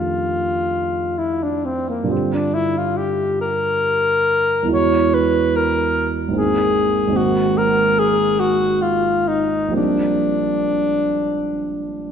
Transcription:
0, 0, Header, 1, 3, 480
1, 0, Start_track
1, 0, Tempo, 918836
1, 1103, Time_signature, 3, 2, 24, 8
1, 1103, Tempo, 865801
1, 2543, Tempo, 823045
1, 4943, Tempo, 944882
1, 5423, Tempo, 985222
1, 6567, End_track
2, 0, Start_track
2, 0, Title_t, "Alto saxophone"
2, 0, Program_c, 0, 65
2, 0, Note_on_c, 0, 65, 53
2, 617, Note_on_c, 0, 64, 45
2, 625, Note_off_c, 0, 65, 0
2, 749, Note_on_c, 0, 62, 41
2, 757, Note_off_c, 0, 64, 0
2, 861, Note_on_c, 0, 60, 43
2, 869, Note_off_c, 0, 62, 0
2, 987, Note_on_c, 0, 58, 40
2, 995, Note_off_c, 0, 60, 0
2, 1102, Note_on_c, 0, 60, 47
2, 1110, Note_off_c, 0, 58, 0
2, 1232, Note_on_c, 0, 62, 47
2, 1241, Note_off_c, 0, 60, 0
2, 1345, Note_on_c, 0, 64, 55
2, 1354, Note_off_c, 0, 62, 0
2, 1474, Note_on_c, 0, 65, 49
2, 1482, Note_off_c, 0, 64, 0
2, 1581, Note_on_c, 0, 67, 50
2, 1590, Note_off_c, 0, 65, 0
2, 1819, Note_off_c, 0, 67, 0
2, 1823, Note_on_c, 0, 70, 61
2, 2529, Note_off_c, 0, 70, 0
2, 2556, Note_on_c, 0, 73, 66
2, 2796, Note_on_c, 0, 71, 56
2, 2805, Note_off_c, 0, 73, 0
2, 3041, Note_on_c, 0, 70, 61
2, 3049, Note_off_c, 0, 71, 0
2, 3362, Note_off_c, 0, 70, 0
2, 3507, Note_on_c, 0, 68, 64
2, 3977, Note_on_c, 0, 66, 61
2, 3985, Note_off_c, 0, 68, 0
2, 4216, Note_on_c, 0, 70, 71
2, 4225, Note_off_c, 0, 66, 0
2, 4458, Note_on_c, 0, 68, 70
2, 4466, Note_off_c, 0, 70, 0
2, 4694, Note_on_c, 0, 66, 59
2, 4703, Note_off_c, 0, 68, 0
2, 4940, Note_on_c, 0, 65, 57
2, 4948, Note_off_c, 0, 66, 0
2, 5174, Note_on_c, 0, 63, 60
2, 5182, Note_off_c, 0, 65, 0
2, 5417, Note_off_c, 0, 63, 0
2, 5420, Note_on_c, 0, 62, 57
2, 6567, Note_off_c, 0, 62, 0
2, 6567, End_track
3, 0, Start_track
3, 0, Title_t, "Grand piano"
3, 0, Program_c, 1, 0
3, 0, Control_c, 1, 64, 127
3, 0, Note_on_c, 1, 41, 29
3, 0, Note_on_c, 1, 51, 24
3, 0, Note_on_c, 1, 57, 26
3, 0, Note_on_c, 1, 62, 25
3, 0, Note_on_c, 1, 67, 23
3, 1056, Note_on_c, 1, 43, 34
3, 1059, Note_off_c, 1, 41, 0
3, 1064, Note_off_c, 1, 51, 0
3, 1064, Note_on_c, 1, 50, 27
3, 1069, Note_off_c, 1, 57, 0
3, 1072, Note_off_c, 1, 62, 0
3, 1074, Note_on_c, 1, 55, 27
3, 1077, Note_off_c, 1, 67, 0
3, 1081, Note_on_c, 1, 65, 27
3, 1091, Note_on_c, 1, 67, 28
3, 1113, Control_c, 1, 64, 0
3, 1206, Control_c, 1, 64, 127
3, 2495, Note_off_c, 1, 43, 0
3, 2498, Note_on_c, 1, 40, 33
3, 2500, Note_off_c, 1, 50, 0
3, 2505, Note_off_c, 1, 55, 0
3, 2508, Note_on_c, 1, 52, 29
3, 2509, Note_off_c, 1, 65, 0
3, 2514, Note_off_c, 1, 67, 0
3, 2515, Note_on_c, 1, 56, 29
3, 2526, Note_on_c, 1, 64, 29
3, 2533, Note_on_c, 1, 66, 28
3, 2553, Control_c, 1, 64, 0
3, 2655, Control_c, 1, 64, 127
3, 3460, Note_on_c, 1, 32, 35
3, 3464, Note_off_c, 1, 40, 0
3, 3469, Note_on_c, 1, 51, 28
3, 3470, Note_off_c, 1, 52, 0
3, 3473, Note_off_c, 1, 56, 0
3, 3479, Note_off_c, 1, 64, 0
3, 3481, Note_on_c, 1, 58, 28
3, 3483, Note_off_c, 1, 66, 0
3, 3491, Note_on_c, 1, 60, 30
3, 3498, Note_on_c, 1, 63, 32
3, 3520, Control_c, 1, 64, 0
3, 3602, Control_c, 1, 64, 127
3, 3915, Note_off_c, 1, 32, 0
3, 3924, Note_on_c, 1, 32, 44
3, 3928, Note_off_c, 1, 51, 0
3, 3935, Note_off_c, 1, 58, 0
3, 3936, Note_on_c, 1, 51, 33
3, 3943, Note_off_c, 1, 60, 0
3, 3944, Note_on_c, 1, 58, 37
3, 3951, Note_off_c, 1, 63, 0
3, 3952, Note_on_c, 1, 60, 34
3, 3963, Note_on_c, 1, 63, 34
3, 3983, Control_c, 1, 64, 0
3, 4075, Control_c, 1, 64, 127
3, 5378, Note_on_c, 1, 34, 33
3, 5383, Note_off_c, 1, 32, 0
3, 5388, Note_off_c, 1, 51, 0
3, 5388, Note_on_c, 1, 55, 29
3, 5389, Note_off_c, 1, 58, 0
3, 5395, Note_off_c, 1, 60, 0
3, 5397, Note_on_c, 1, 58, 30
3, 5400, Note_off_c, 1, 63, 0
3, 5404, Note_on_c, 1, 60, 28
3, 5413, Note_on_c, 1, 62, 29
3, 5433, Control_c, 1, 64, 0
3, 5515, Control_c, 1, 64, 127
3, 6567, Note_off_c, 1, 34, 0
3, 6567, Note_off_c, 1, 55, 0
3, 6567, Note_off_c, 1, 58, 0
3, 6567, Note_off_c, 1, 60, 0
3, 6567, Note_off_c, 1, 62, 0
3, 6567, End_track
0, 0, End_of_file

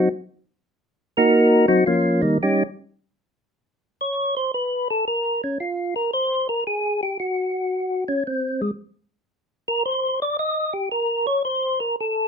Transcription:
0, 0, Header, 1, 2, 480
1, 0, Start_track
1, 0, Tempo, 531915
1, 1669, Time_signature, 4, 2, 24, 8
1, 11081, End_track
2, 0, Start_track
2, 0, Title_t, "Tonewheel organ"
2, 0, Program_c, 0, 16
2, 1056, Note_on_c, 0, 70, 102
2, 1060, Note_on_c, 0, 58, 86
2, 1063, Note_on_c, 0, 66, 81
2, 1066, Note_on_c, 0, 63, 75
2, 1495, Note_off_c, 0, 70, 0
2, 1497, Note_off_c, 0, 58, 0
2, 1499, Note_off_c, 0, 66, 0
2, 1500, Note_off_c, 0, 63, 0
2, 1517, Note_on_c, 0, 54, 61
2, 1518, Note_on_c, 0, 60, 61
2, 1520, Note_on_c, 0, 66, 85
2, 1522, Note_on_c, 0, 63, 65
2, 1663, Note_off_c, 0, 54, 0
2, 1663, Note_off_c, 0, 60, 0
2, 1664, Note_off_c, 0, 66, 0
2, 1665, Note_off_c, 0, 63, 0
2, 1680, Note_on_c, 0, 65, 70
2, 1688, Note_on_c, 0, 53, 53
2, 1689, Note_on_c, 0, 61, 57
2, 1691, Note_on_c, 0, 58, 53
2, 1996, Note_off_c, 0, 65, 0
2, 2000, Note_off_c, 0, 53, 0
2, 2000, Note_off_c, 0, 58, 0
2, 2000, Note_on_c, 0, 63, 84
2, 2001, Note_off_c, 0, 61, 0
2, 2005, Note_on_c, 0, 51, 67
2, 2007, Note_on_c, 0, 55, 60
2, 2011, Note_on_c, 0, 58, 60
2, 2144, Note_off_c, 0, 63, 0
2, 2147, Note_off_c, 0, 51, 0
2, 2148, Note_off_c, 0, 55, 0
2, 2150, Note_off_c, 0, 58, 0
2, 2189, Note_on_c, 0, 67, 82
2, 2190, Note_on_c, 0, 61, 67
2, 2190, Note_on_c, 0, 63, 69
2, 2193, Note_on_c, 0, 55, 68
2, 2375, Note_off_c, 0, 67, 0
2, 2376, Note_off_c, 0, 61, 0
2, 2376, Note_off_c, 0, 63, 0
2, 2378, Note_off_c, 0, 55, 0
2, 3618, Note_on_c, 0, 73, 80
2, 3925, Note_off_c, 0, 73, 0
2, 3940, Note_on_c, 0, 72, 91
2, 4074, Note_off_c, 0, 72, 0
2, 4099, Note_on_c, 0, 71, 84
2, 4405, Note_off_c, 0, 71, 0
2, 4426, Note_on_c, 0, 69, 83
2, 4557, Note_off_c, 0, 69, 0
2, 4581, Note_on_c, 0, 70, 90
2, 4887, Note_off_c, 0, 70, 0
2, 4906, Note_on_c, 0, 61, 69
2, 5038, Note_off_c, 0, 61, 0
2, 5056, Note_on_c, 0, 65, 74
2, 5364, Note_off_c, 0, 65, 0
2, 5376, Note_on_c, 0, 70, 88
2, 5513, Note_off_c, 0, 70, 0
2, 5536, Note_on_c, 0, 72, 89
2, 5844, Note_off_c, 0, 72, 0
2, 5856, Note_on_c, 0, 70, 90
2, 5993, Note_off_c, 0, 70, 0
2, 6019, Note_on_c, 0, 68, 86
2, 6326, Note_off_c, 0, 68, 0
2, 6341, Note_on_c, 0, 67, 82
2, 6476, Note_off_c, 0, 67, 0
2, 6495, Note_on_c, 0, 66, 70
2, 7258, Note_off_c, 0, 66, 0
2, 7294, Note_on_c, 0, 61, 80
2, 7432, Note_off_c, 0, 61, 0
2, 7465, Note_on_c, 0, 60, 74
2, 7769, Note_off_c, 0, 60, 0
2, 7776, Note_on_c, 0, 56, 82
2, 7861, Note_off_c, 0, 56, 0
2, 8736, Note_on_c, 0, 70, 101
2, 8874, Note_off_c, 0, 70, 0
2, 8893, Note_on_c, 0, 72, 90
2, 9204, Note_off_c, 0, 72, 0
2, 9223, Note_on_c, 0, 74, 95
2, 9358, Note_off_c, 0, 74, 0
2, 9378, Note_on_c, 0, 75, 98
2, 9686, Note_on_c, 0, 67, 65
2, 9687, Note_off_c, 0, 75, 0
2, 9829, Note_off_c, 0, 67, 0
2, 9850, Note_on_c, 0, 70, 90
2, 10162, Note_off_c, 0, 70, 0
2, 10168, Note_on_c, 0, 73, 108
2, 10310, Note_off_c, 0, 73, 0
2, 10331, Note_on_c, 0, 72, 85
2, 10643, Note_off_c, 0, 72, 0
2, 10650, Note_on_c, 0, 70, 85
2, 10791, Note_off_c, 0, 70, 0
2, 10833, Note_on_c, 0, 69, 83
2, 11081, Note_off_c, 0, 69, 0
2, 11081, End_track
0, 0, End_of_file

